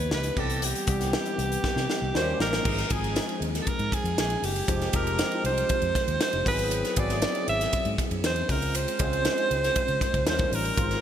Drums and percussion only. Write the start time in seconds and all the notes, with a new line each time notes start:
0.11 snare
0.23 closed hi-hat
0.37 kick, crash
0.50 closed hi-hat
0.62 closed hi-hat
0.75 closed hi-hat
0.87 kick, closed hi-hat
1.01 snare, closed hi-hat
1.13 snare
1.26 closed hi-hat
1.39 closed hi-hat
1.52 closed hi-hat
1.64 kick, snare
1.77 snare
1.90 snare
2.15 snare
2.40 snare
2.53 snare
2.65 kick, crash
2.78 snare, ride
2.90 kick, ride
3.04 ride
3.16 snare, ride
3.29 ride
3.42 ride
3.54 snare, ride
3.67 kick, ride
3.79 ride
3.92 kick, ride
4.05 ride
4.18 snare, ride
4.30 ride
4.44 open hi-hat, ride
4.56 ride
4.68 kick, hi-hat pedal, ride
4.81 snare, ride
4.93 kick, ride
5.07 ride
5.19 snare, ride
5.32 ride
5.45 ride
5.58 ride
5.69 kick, ride
5.82 ride
5.95 kick, snare, ride
6.08 ride
6.21 snare, ride
6.33 ride
6.46 kick, open hi-hat, ride
6.59 ride
6.71 hi-hat pedal, ride
6.85 snare, ride
6.96 kick, ride
7.10 snare, ride
7.22 snare, ride
7.35 ride
7.48 ride
7.60 snare, ride
7.73 kick, ride
7.85 ride
7.98 kick, snare, ride
8.11 ride
8.24 snare, ride
8.36 ride
8.49 kick, open hi-hat, ride
8.62 ride
8.75 hi-hat pedal, ride
8.88 ride
8.99 kick, ride
9.13 ride
9.25 snare, ride
9.38 ride
9.51 ride
9.64 snare, ride
9.76 kick, ride
9.88 ride
10.01 kick, snare, ride
10.14 kick, ride
10.27 snare, ride
10.39 kick, ride
10.53 open hi-hat, ride
10.65 ride
10.77 kick, hi-hat pedal, ride
10.91 snare, ride